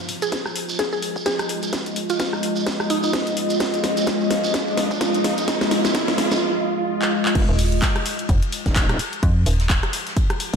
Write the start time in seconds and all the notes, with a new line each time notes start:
Already playing: G#3 F4 D#5, riser
0.09 open hi-hat
0.22 G#4, closed hi-hat, shekere
0.32 kick, snare, closed hi-hat, shekere
0.46 cross-stick, shekere
0.56 open hi-hat
0.69 shekere
0.79 G#4, kick, snare, closed hi-hat, shekere
0.92 G#4, shekere
1.02 open hi-hat
1.16 kick, shekere
1.26 G#4, kick, snare, closed hi-hat, shekere
1.39 cross-stick, closed hi-hat, shekere
1.49 open hi-hat
1.63 closed hi-hat, shekere
1.73 kick, snare, closed hi-hat, shekere
1.86 closed hi-hat, shekere
1.96 open hi-hat
2.10 F4, closed hi-hat, shekere
2.20 F4, kick, snare, closed hi-hat, shekere
2.33 cross-stick, shekere
2.43 open hi-hat
2.56 shekere
2.67 kick, snare, closed hi-hat, shekere
2.80 cross-stick, shekere
2.90 D#4, open hi-hat
3.03 D#4, shekere
3.13 kick, snare, closed hi-hat, shekere
3.27 closed hi-hat, shekere
3.37 open hi-hat
3.50 closed hi-hat, shekere
3.60 kick, snare, closed hi-hat, shekere
3.74 closed hi-hat, shekere
3.84 snare, open hi-hat
3.97 closed hi-hat, shekere
4.06 kick, snare, closed hi-hat, shekere
4.20 shekere
4.31 snare, open hi-hat
4.44 shekere
4.54 kick, snare, closed hi-hat, shekere
4.67 shekere
4.77 snare, open hi-hat
4.91 kick, shekere
5.01 kick, snare, closed hi-hat, shekere
5.14 closed hi-hat, shekere
5.24 snare, open hi-hat
5.38 closed hi-hat, shekere
5.48 kick, snare, closed hi-hat, shekere
5.61 snare, closed hi-hat, shekere
5.71 snare, open hi-hat
5.85 snare, closed hi-hat, shekere
5.94 kick, snare, closed hi-hat, shekere
6.08 snare, shekere
6.18 snare, open hi-hat
6.31 snare, shekere
6.42 swell
7.02 clap
7.25 clap
7.35 F1 G#3 F4 D#5, kick, closed hi-hat, crash, ride
7.49 D#1
7.59 open hi-hat
7.72 closed hi-hat
7.82 kick, snare, clap, closed hi-hat, ride
7.95 cross-stick, closed hi-hat, ride
8.05 open hi-hat, ride
8.19 closed hi-hat, ride
8.29 F1, kick, closed hi-hat, ride
8.43 closed hi-hat
8.52 open hi-hat, ride
8.66 D#1, kick, snare, closed hi-hat
8.76 kick, snare, clap, closed hi-hat, ride
8.89 cross-stick, closed hi-hat, ride
8.99 open hi-hat, ride
9.13 closed hi-hat
9.23 F2, kick, closed hi-hat, ride
9.46 D#1, open hi-hat, ride
9.60 snare, closed hi-hat
9.69 kick, snare, clap, closed hi-hat, ride
9.82 cross-stick, closed hi-hat, ride
9.93 open hi-hat, ride
10.07 snare, closed hi-hat
10.17 kick, closed hi-hat, ride
10.30 cross-stick, closed hi-hat, ride
10.40 open hi-hat, ride